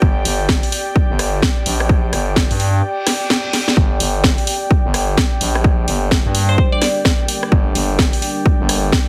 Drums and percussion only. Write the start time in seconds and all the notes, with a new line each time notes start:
0.02 kick
0.25 open hi-hat
0.49 kick, snare
0.63 open hi-hat
0.72 open hi-hat
0.96 kick
1.19 cross-stick, open hi-hat
1.42 kick, snare
1.66 open hi-hat
1.80 cross-stick
1.89 kick
2.13 cross-stick, open hi-hat
2.36 kick, snare
2.51 open hi-hat
2.60 open hi-hat
3.07 cross-stick, snare, open hi-hat
3.30 snare
3.53 snare, open hi-hat
3.68 snare
3.77 kick
4.00 open hi-hat
4.24 kick, snare
4.38 open hi-hat
4.47 open hi-hat
4.71 kick
4.94 cross-stick, open hi-hat
5.17 kick, snare
5.41 open hi-hat
5.55 cross-stick
5.64 kick
5.88 open hi-hat
6.11 kick, snare
6.35 open hi-hat
6.58 kick
6.82 cross-stick, snare, open hi-hat
7.05 kick, snare
7.28 open hi-hat
7.43 cross-stick
7.52 kick
7.75 open hi-hat
7.99 kick, snare
8.13 open hi-hat
8.22 open hi-hat
8.46 kick
8.69 cross-stick, open hi-hat
8.92 kick, snare